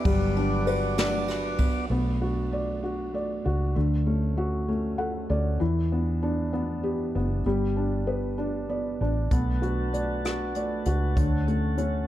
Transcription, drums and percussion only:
0.05 kick, ride
0.36 ride
0.67 ride
0.98 snare, ride
1.28 snare, ride
1.58 kick, ride
9.31 kick, closed hi-hat
9.63 closed hi-hat
9.94 closed hi-hat
10.25 cross-stick, closed hi-hat
10.55 closed hi-hat
10.85 closed hi-hat
11.17 kick, closed hi-hat
11.48 closed hi-hat
11.78 closed hi-hat

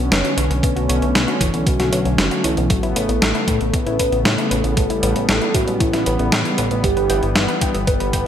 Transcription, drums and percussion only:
0.12 snare, closed hi-hat
0.25 closed hi-hat
0.38 closed hi-hat
0.51 closed hi-hat
0.63 kick, closed hi-hat
0.77 closed hi-hat
0.90 closed hi-hat
1.02 closed hi-hat
1.15 snare, closed hi-hat
1.28 closed hi-hat
1.41 kick, closed hi-hat
1.54 closed hi-hat
1.67 kick, closed hi-hat
1.80 snare, closed hi-hat
1.93 closed hi-hat
2.05 closed hi-hat
2.18 snare, closed hi-hat
2.31 closed hi-hat
2.44 closed hi-hat
2.57 closed hi-hat
2.70 kick, closed hi-hat
2.83 closed hi-hat
2.96 closed hi-hat
3.09 closed hi-hat
3.22 snare, closed hi-hat
3.35 closed hi-hat
3.48 kick, closed hi-hat
3.61 closed hi-hat
3.74 kick, closed hi-hat
3.87 closed hi-hat
3.99 kick, closed hi-hat
4.12 closed hi-hat
4.25 snare, closed hi-hat
4.38 closed hi-hat
4.51 closed hi-hat
4.64 closed hi-hat
4.77 kick, closed hi-hat
4.90 closed hi-hat
5.03 closed hi-hat
5.16 closed hi-hat
5.29 snare, closed hi-hat
5.42 closed hi-hat
5.54 kick, closed hi-hat
5.68 closed hi-hat
5.80 kick, closed hi-hat
5.93 snare, closed hi-hat
6.06 closed hi-hat
6.19 closed hi-hat
6.32 snare, closed hi-hat
6.45 closed hi-hat
6.58 closed hi-hat
6.71 closed hi-hat
6.84 kick, closed hi-hat
6.97 closed hi-hat
7.10 closed hi-hat
7.23 closed hi-hat
7.36 snare, closed hi-hat
7.48 closed hi-hat
7.61 kick, closed hi-hat
7.75 closed hi-hat
7.87 kick, closed hi-hat
8.00 closed hi-hat
8.13 kick, closed hi-hat

